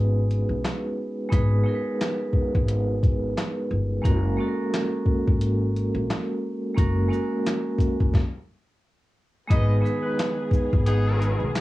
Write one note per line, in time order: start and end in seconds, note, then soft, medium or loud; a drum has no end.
0.00 0.42 G#1 medium
0.00 1.29 G#3 medium
0.00 1.30 B3 medium
0.00 1.31 D#4 medium
0.00 1.32 G#4 medium
0.00 1.34 B4 medium
0.31 closed hi-hat soft
0.49 0.62 B1 medium
0.65 snare loud
0.65 clap medium
0.65 closed hi-hat medium
1.29 1.62 G#1 loud
1.29 1.54 G#3 medium
1.29 1.55 B3 medium
1.29 1.55 D#4 medium
1.29 1.56 G#4 medium
1.29 kick loud
1.29 closed hi-hat loud
1.34 1.56 B4 medium
1.64 2.55 G#3 medium
1.64 2.55 B3 medium
1.64 2.56 D#4 medium
1.64 2.56 G#4 medium
1.68 1.75 A#4 medium
1.75 2.60 B4 loud
2.01 snare loud
2.01 clap medium
2.01 closed hi-hat medium
2.33 kick medium
2.55 3.33 G#1 medium
2.55 kick medium
2.68 closed hi-hat medium
3.03 kick loud
3.03 closed hi-hat soft
3.38 snare loud
3.38 clap medium
3.38 closed hi-hat medium
3.71 4.01 G1 medium
4.02 4.35 F#1 loud
4.02 4.27 G#3 medium
4.02 4.27 A#3 medium
4.02 4.28 C#4 medium
4.02 4.28 F#4 medium
4.02 kick loud
4.02 closed hi-hat loud
4.06 4.29 A#4 loud
4.37 5.28 G#3 medium
4.37 5.28 A#3 medium
4.37 5.29 C#4 medium
4.37 5.29 F#4 medium
4.42 4.48 A4 medium
4.48 5.33 A#4 loud
4.74 snare loud
4.74 clap medium
4.74 closed hi-hat medium
5.06 kick medium
5.27 5.88 G#1 medium
5.27 kick medium
5.41 closed hi-hat medium
5.76 closed hi-hat soft
5.95 6.08 A#1 loud
6.10 snare loud
6.10 clap medium
6.10 closed hi-hat medium
6.74 7.08 F#1 loud
6.74 6.99 G#3 medium
6.74 7.00 A#3 medium
6.74 7.01 C#4 medium
6.74 7.01 F#4 medium
6.74 kick loud
6.74 closed hi-hat loud
6.79 7.02 A#4 loud
7.08 7.99 G#3 medium
7.08 8.00 A#3 medium
7.08 8.01 C#4 medium
7.08 8.01 F#4 medium
7.13 8.02 A#4 loud
7.13 shaker medium
7.46 snare loud
7.46 clap medium
7.46 closed hi-hat medium
7.78 kick medium
7.78 closed hi-hat medium
7.78 shaker medium
8.00 8.14 F#1 medium
8.00 kick medium
8.14 kick loud
8.14 snare medium
9.48 9.81 G#1 loud
9.48 11.61 D#3 medium
9.48 9.72 G#3 medium
9.48 11.61 G#3 medium
9.48 11.61 B3 medium
9.48 9.73 B3 medium
9.48 9.74 D#4 medium
9.48 11.61 G#4 medium
9.48 9.77 G#4 medium
9.48 9.74 G#4 medium
9.48 9.77 B4 medium
9.48 9.77 D#5 loud
9.48 kick loud
9.48 closed hi-hat loud
9.52 9.75 B4 medium
9.81 10.72 G#3 medium
9.81 10.73 B3 medium
9.81 10.73 D#4 medium
9.81 10.74 G#4 medium
9.85 10.74 B4 loud
9.85 shaker medium
10.03 10.49 D#4 medium
10.03 10.49 G#4 medium
10.03 10.49 B4 medium
10.19 snare loud
10.19 clap medium
10.19 closed hi-hat medium
10.51 kick medium
10.51 shaker medium
10.73 11.33 G#1 loud
10.73 kick medium
10.86 11.51 B3 loud
10.86 11.51 D#4 loud
10.86 11.51 G#4 loud
10.86 closed hi-hat medium
11.22 closed hi-hat soft
11.22 shaker soft
11.40 11.53 B1 medium
11.56 snare loud
11.56 clap medium
11.56 closed hi-hat medium